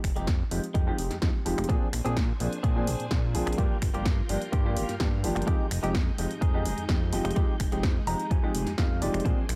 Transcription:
0.04 analog synth bass F1, finger snap, kick, open hi-hat
0.16 analog synth bass F1, grand piano F3 G#3 C4 D#4 G4, clean electric guitar G#3 D#4 G4, closed hi-hat
0.27 analog synth bass F2, kick, snare, closed hi-hat
0.39 muted clean electric guitar stroke
0.51 analog synth bass F1, grand piano F3 G#3 C4 D#4 G4, open hi-hat
0.64 closed hi-hat
0.74 analog synth bass F2, clean electric guitar G#3 D#4 G4, kick, closed hi-hat
0.87 grand piano F3 G#3 C4 D#4 G4
0.98 analog synth bass F1, open hi-hat
1.11 analog synth bass F2, snare, closed hi-hat
1.22 analog synth bass F2, grand piano F3 G#3 C4 D#4 G4, kick, snare, closed hi-hat
1.45 analog synth bass F1, grand piano F3 G#3 C4 D#4 G4, open hi-hat
1.58 analog synth bass F1, finger snap, muted clean electric guitar stroke, closed hi-hat
1.64 closed hi-hat
1.69 analog synth bass A#2, grand piano F3 A#3 C4 D4 G#4, clean electric guitar C4 D4 G#4, string machine D4 C5 G#5, kick, closed hi-hat
1.93 analog synth bass A#1, finger snap, open hi-hat
2.05 analog synth bass A#1, grand piano F3 A#3 C4 D4 G#4, clean electric guitar C4 D4 G#4, closed hi-hat
2.17 analog synth bass A#2, kick, snare, closed hi-hat
2.28 muted clean electric guitar stroke
2.40 analog synth bass A#1, grand piano F3 A#3 C4 D4 G#4, open hi-hat
2.53 closed hi-hat
2.63 analog synth bass A#2, clean electric guitar C4 D4 G#4, kick, closed hi-hat
2.76 grand piano F3 A#3 C4 D4 G#4
2.87 analog synth bass A#1, open hi-hat
3.00 analog synth bass A#2, closed hi-hat
3.11 analog synth bass A#2, grand piano F3 A#3 C4 D4 G#4, kick, snare, closed hi-hat
3.35 analog synth bass A#1, grand piano F3 A#3 C4 D4 G#4, open hi-hat
3.47 analog synth bass A#1, finger snap, muted clean electric guitar stroke, closed hi-hat
3.53 closed hi-hat
3.58 analog synth bass G2, grand piano F3 G3 A#3 D4 G4, clean electric guitar A#3 F4 G4, string machine F4 A#4 G6, kick, closed hi-hat
3.82 analog synth bass G1, finger snap, kick, open hi-hat
3.94 analog synth bass G1, grand piano F3 G3 A#3 D4 G4, clean electric guitar A#3 F4 G4, closed hi-hat
4.05 analog synth bass G2, kick, snare, closed hi-hat
4.18 muted clean electric guitar stroke
4.29 analog synth bass G1, grand piano F3 G3 A#3 D4 G4, open hi-hat
4.42 closed hi-hat
4.52 analog synth bass G2, clean electric guitar A#3 F4 G4, kick, closed hi-hat
4.65 grand piano F3 G3 A#3 D4 G4
4.77 analog synth bass G1, open hi-hat
4.89 analog synth bass G2, snare, closed hi-hat
5.00 analog synth bass G2, grand piano F3 G3 A#3 D4 G4, kick, snare, closed hi-hat
5.24 analog synth bass G1, grand piano F3 G3 A#3 D4 G4, open hi-hat
5.36 analog synth bass G1, finger snap, muted clean electric guitar stroke, closed hi-hat
5.42 closed hi-hat
5.47 analog synth bass F2, grand piano F3 G#3 C4 D#4 G4, clean electric guitar G#3 D#4 G4, string machine G#3 D#4, kick, closed hi-hat
5.71 analog synth bass F1, finger snap, open hi-hat
5.83 analog synth bass F1, grand piano F3 G#3 C4 D#4 G4, clean electric guitar G#3 D#4 G4, closed hi-hat
5.95 analog synth bass F2, kick, snare, closed hi-hat
6.06 muted clean electric guitar stroke
6.18 analog synth bass F1, grand piano F3 G#3 C4 D#4 G4, open hi-hat
6.31 closed hi-hat
6.41 analog synth bass F2, clean electric guitar G#3 D#4 G#4, kick, closed hi-hat
6.54 grand piano F3 G#3 C4 D#4 G4
6.65 analog synth bass F1, open hi-hat
6.78 analog synth bass F2, closed hi-hat
6.89 analog synth bass F2, grand piano F3 G#3 C4 D#4 G4, kick, snare, closed hi-hat
7.13 analog synth bass F1, grand piano F3 G#3 C4 D#4 G4, open hi-hat
7.25 analog synth bass F1, finger snap, muted clean electric guitar stroke, closed hi-hat
7.31 closed hi-hat
7.36 analog synth bass F2, grand piano F3 G#3 C4 D#4 G4, clean electric guitar G#3 D#4 G4, kick
7.60 analog synth bass F1, finger snap, kick, open hi-hat
7.72 analog synth bass F1, grand piano F3 G#3 C4 D#4 G4, clean electric guitar G#3 D#4 G4, closed hi-hat
7.83 analog synth bass F2, kick, snare, closed hi-hat
7.95 muted clean electric guitar stroke
8.07 analog synth bass F1, grand piano F3 G#3 C4 D#4 G4, clean electric guitar A#5, open hi-hat
8.20 closed hi-hat
8.30 analog synth bass F2, clean electric guitar G#3 D#4 G4 G#5, kick, closed hi-hat
8.43 grand piano F3 G#3 C4 D#4 G4
8.54 analog synth bass F1, open hi-hat
8.66 analog synth bass F2, snare, closed hi-hat
8.78 analog synth bass F2, grand piano F3 G#3 C4 D#4 G4, clean electric guitar F5, kick, snare, closed hi-hat
9.01 analog synth bass F1, grand piano F3 G#3 C4 D#4 G4, clean electric guitar D5, open hi-hat
9.14 analog synth bass F1, finger snap, muted clean electric guitar stroke, closed hi-hat
9.20 closed hi-hat
9.25 analog synth bass A#2, grand piano F3 A#3 C4 D4 G#4, clean electric guitar C4 D4 G#4, string machine D4 C5 G#5, kick, closed hi-hat
9.49 analog synth bass A#1, finger snap, open hi-hat

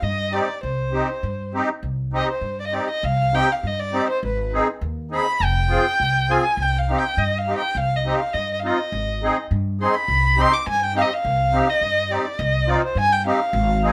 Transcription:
0.02 upright bass G2, violin D#5
0.32 accordion C4 D#4 G4, violin D5
0.63 upright bass C2, violin C5
0.93 accordion C4 D#4 G4
1.23 upright bass G2
1.54 accordion C4 D#4 G4
1.83 upright bass C2
2.13 accordion C4 D#4 G4, violin D#5
2.31 violin C5
2.41 upright bass G2
2.60 violin D5
2.67 violin D#5
2.72 accordion C4 D#4 G4, violin D5
2.90 violin D#5
3.03 upright bass C2, violin F5
3.34 accordion C4 D#4 G4, violin G5
3.51 violin F5
3.63 upright bass G2, violin D#5
3.79 violin D5
3.93 accordion C4 D#4 G4
4.10 violin C5
4.23 upright bass G#1, violin B4
4.53 accordion C4 D#4 G#4
4.81 upright bass D#2
5.11 accordion C4 D#4 G#4, violin B5
5.40 upright bass F1, violin G5
5.70 accordion C4 F4 G#4
6.00 upright bass C2
6.29 accordion C4 F4 G#4, violin G#5
6.57 upright bass C2
6.62 violin G5
6.78 violin F5
6.90 accordion C4 D#4 G4
6.98 violin G5
7.17 upright bass G2, violin D#5
7.38 violin F5
7.48 accordion C4 D#4 G4
7.58 violin G5
7.75 upright bass C2, violin F5
7.96 violin D#5
8.06 accordion C4 D#4 G4
8.14 violin F5
8.33 upright bass G2, violin D#5
8.53 violin D#5
8.60 violin F5
8.64 accordion C4 D#4 F4, violin D#5
8.92 upright bass G#1
9.23 accordion C4 D#4 G#4
9.51 upright bass G2
9.81 accordion C4 D#4 G#4, violin C6
9.95 violin B5
10.08 upright bass C2
10.37 accordion C4 D#4 G4, violin C6
10.53 violin D6
10.67 upright bass G2, violin G#5
10.79 violin G#5
10.84 violin G5
10.95 accordion C4 D#4 G4, violin F5
11.01 violin D#5
11.13 violin F5
11.25 upright bass C2
11.53 accordion C4 D#4 G4
11.70 violin D#5
11.81 upright bass G2
12.10 accordion C4 D#4 G4, violin D5
12.39 upright bass C2, violin D#5
12.68 accordion C4 D#4 F4, violin D5
12.84 violin C5
12.95 upright bass G2, violin G#5
13.12 violin G5
13.26 accordion C4 D#4 G4, violin F5
13.53 upright bass G#1
13.84 accordion C4 D#4 G#4

